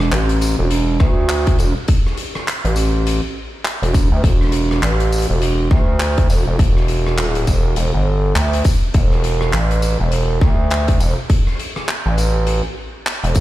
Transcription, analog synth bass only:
Already playing: E1
0.12 A1
0.59 E1
1.00 D2
1.59 E1
2.65 A1
3.82 E1
4.12 D2
4.24 E1
4.83 A1
5.30 E1
5.71 D2
6.30 E1
6.47 E1
6.59 E1
7.20 D#1
7.47 E1
7.77 E1
7.94 G1
8.36 D2
8.94 E1
9.53 A1
10.00 E1
10.41 D2
11.00 E1
12.06 A1
13.24 E1

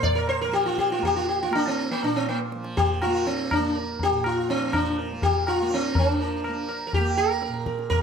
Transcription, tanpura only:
Already playing: A#2 F3 A#3
0.48 F3
0.99 A#3
1.50 A#3
2.03 A#2
2.55 F3
3.06 A#3
3.59 A#3
4.11 A#2
4.60 F3
5.12 A#3
5.62 A#3
5.96 F3
6.48 A#3
7.00 A#3
7.48 A#2

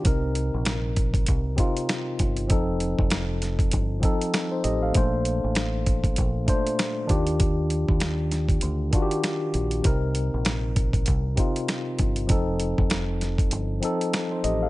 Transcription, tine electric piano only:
0.02 C3 C4 D#4
0.07 A#4
1.55 C3 C4 D#4
1.60 F4
2.47 F3 C4 D#4
2.52 A4
4.00 F3 C4 D#4
4.05 A4
4.51 D#4 C5
4.64 G4 D#5
4.82 A4 F5
4.93 A3 A#3 D4
4.97 C5
6.45 A#2 A3 D4
6.49 C5
7.06 D#3 D4 F4
7.11 G4
8.91 D#3 D4 F4
8.96 F#4
9.02 G4
9.82 C3 C4 D#4
9.86 A#4
11.35 C3 C4 D#4
11.40 F4
12.27 F3 C4 D#4
12.31 A4
13.80 F3 C4 D#4
13.85 A4
14.31 D#4 C5
14.44 G4 D#5
14.62 A4 F5

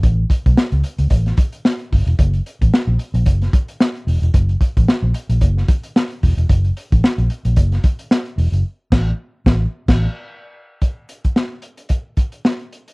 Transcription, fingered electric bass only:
0.03 A1
0.46 B1
0.72 C#2
0.99 C#2
1.11 A1
1.92 G1
2.06 E1
2.19 F#1
2.61 A1
2.87 A#1
3.14 A#1
3.26 F#1
4.07 E1
4.22 E1
4.34 F#1
4.77 A1
5.02 A#1
5.29 A#1
5.41 F#1
6.23 E1
6.37 E1
6.49 F#1
6.92 A1
7.18 A#1
7.45 A#1
7.57 F#1
8.38 E1
8.52 F#1
8.92 A1
9.46 A1
9.88 A1

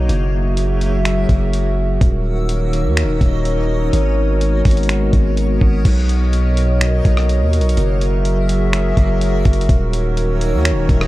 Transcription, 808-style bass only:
0.09 F#1
1.29 F#1
2.01 D#1
2.85 D#2
3.03 D#1
3.21 D#1
3.93 G#1
4.65 G#1
5.13 G#1
5.61 G#1
5.85 B1
7.05 B1
7.41 D#2
7.59 B1
7.77 F#1
8.97 F#1
9.45 F#1
9.69 D#1
10.53 D#2
10.71 D#1
10.89 D#1

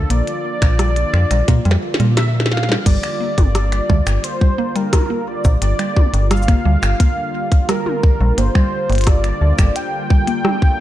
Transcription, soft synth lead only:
Already playing: A4
0.10 D5
2.18 E5
2.52 F5
2.86 D5
4.24 C5
4.76 A#4
5.28 D5
5.62 D5
6.31 F5
7.69 A#4
8.38 C5
9.07 D5
9.76 G5

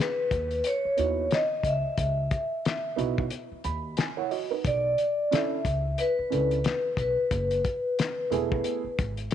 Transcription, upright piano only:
0.97 B3 D#4 E4 F#4
2.96 B3 D#4 E4 F#4
3.65 B5
3.97 G#5
4.17 E4 C#5 F#5
4.31 F#4 D#5
4.51 D#4 B4
5.31 C#4 D4 E4 A4
6.30 C#4 D4 E4 A4
8.30 A3 B3 E4 G#4

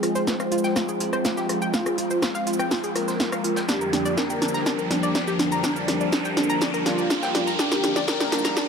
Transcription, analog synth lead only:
Already playing: G#4
0.27 C5
1.74 F4
2.96 A#4
3.69 G4
4.18 A#4
5.64 D4
6.86 F4
7.59 G4
8.08 A#4

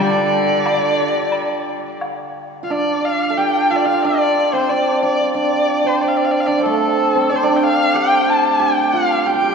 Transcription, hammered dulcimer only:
Already playing: D4 F4 G4 A4
2.63 F4
2.70 D4
3.30 A4
3.38 G4
3.71 F4
3.86 F4
4.04 D4
4.53 C4
4.70 D4
5.03 D4
5.34 D4
5.84 C4
6.48 D4
6.59 C4
6.65 A3
7.15 C4
7.31 D4
7.43 D4
7.94 G4
8.60 G4
8.93 F4
9.26 G4
9.34 G4
9.42 G4
9.49 G4

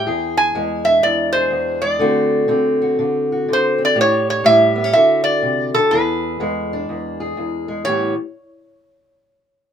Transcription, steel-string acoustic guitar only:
0.06 E2 G#4
0.55 E2 G#3
0.87 D4
1.03 E2
1.35 G#4
1.51 E2
1.82 G#3
1.99 D3 A3 C4 F#4
2.48 D3 C4
2.82 F#4
2.99 D3
3.32 F#4
3.48 D3
3.78 C4
3.95 A2 G4
4.44 A2 G3
4.75 B3
4.84 C#4
4.95 D3 F#4
5.42 C3
5.75 D3
5.92 E2 G#4
6.40 E2 G#3
6.73 D4
6.89 E2
7.20 G#4
7.37 E2
7.68 G#3
7.84 A2 E3 G3 B3 G4

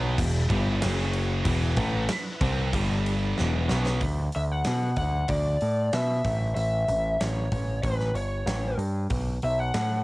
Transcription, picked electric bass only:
Already playing: B1
0.18 E1
0.50 G1
0.84 F#1
1.45 E1
1.77 A1
2.41 C2
2.73 G1
3.40 E1
3.71 B1
4.01 D2
4.36 D2
4.67 B2
4.97 D2
5.29 D2
5.62 A2
5.93 B2
6.24 A1
6.56 A1
6.88 A1
7.21 A1
7.52 A1
7.83 A1
8.14 G1
8.46 A1
8.78 G2
9.10 B1
9.43 B1
9.75 A2

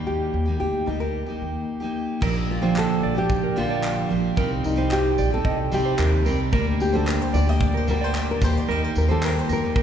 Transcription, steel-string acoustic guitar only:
Already playing: D#3 G3 A#3 D#4 G4
0.46 A#3 D#4 G4
0.86 G3 A#3 D#4 G4
1.26 A#3 D#4 G4
1.80 A#3 D#4 G4
2.21 F3 A#3 D4 G4
2.61 A#2 D3 F3 A#3 D4 G4
3.15 F3 A#3 D4 G4
3.56 A#2 D3 F3 A#3 D4 G4
4.09 F3 A#3 D4 G4
4.36 G3 C4 D#4 G4
4.76 C3 G3 C4 D#4 G4
5.30 C4 D#4 G4
5.71 C3 G3 C4 D#4 G4
6.25 G3 C4 D#4 G4
6.52 G3 A#3 D4 G4
6.92 D3 G3 A#3 D4 G4
7.46 A#3 D4 G4
7.87 D3 G3 A#3 D4 G4
8.41 G3 A#3 D#4 G4
8.68 G3 A#3 D#4 G4
9.09 D#3 G3 A#3 D#4 G4
9.62 A#3 D#4 G4

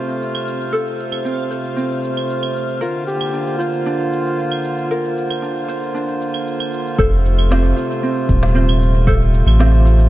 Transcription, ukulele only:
Already playing: C4 A4 C5
0.73 A4
1.25 C4
1.50 C5
1.76 C4
2.81 A#4
3.33 D4
3.59 C5
3.86 D4
4.91 A#4
5.42 D4
5.68 C5
5.95 D4
6.98 A4 C5
7.51 C4 F4 C5
7.77 F4
8.03 C4
8.55 C4 F4 C5
9.07 A4 C5
9.59 C4 F4 C5
9.85 F4

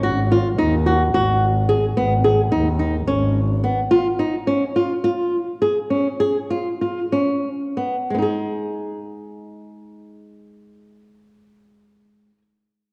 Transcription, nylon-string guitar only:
0.03 F#4
0.32 F4
0.58 D#4
0.86 F#4
1.14 F#4
1.69 G#4
1.97 B3
2.24 G#4
2.52 D#4
2.79 D#4
3.08 C#4
3.64 B3
3.91 F4
4.19 D#4
4.47 C#4
4.76 F4
5.04 F4
5.62 G#4
5.90 C#4
6.20 G#4
6.50 F4
6.81 F4
7.12 C#4
7.77 B3
8.10 G#3
8.14 B3 D#4
8.22 G#4

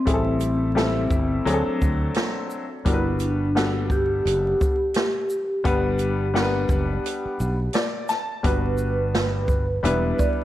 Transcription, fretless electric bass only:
0.07 A1
1.10 G1
1.46 D2
1.67 muted fretless electric bass stroke
1.81 D2
2.86 G1
4.26 F#1
5.65 G1
6.69 F#1
7.25 muted fretless electric bass stroke
7.40 B1
8.44 G1
9.84 E1

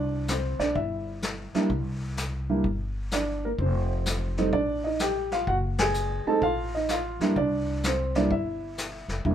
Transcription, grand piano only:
Already playing: D4 D5
0.29 C4 C5
0.60 D4 D5
0.75 E4 E5
1.55 G3 A#3 D4 E4
2.49 G3 A#3 D4 E4
3.13 D4 D5
3.45 A#3 A#4
3.61 C4 C5
4.38 G3 A3 C4 D#4
4.53 D4 D5
4.84 D#4 D#5
5.01 G4 G5
5.32 F4 F5
5.48 F#4 F#5
5.80 G#4 G#5
6.27 G#3 A3 C4 D#4 A4 A5
6.43 F4 F5
6.75 D#4 D#5
6.91 F4 F5
7.21 G3 A#3 D4 E4
7.37 D4 D5
7.85 C4 C5
8.16 G3 A#3 D4 E4 D5
8.32 E4 E5
9.25 G3 A#3 D4 E4

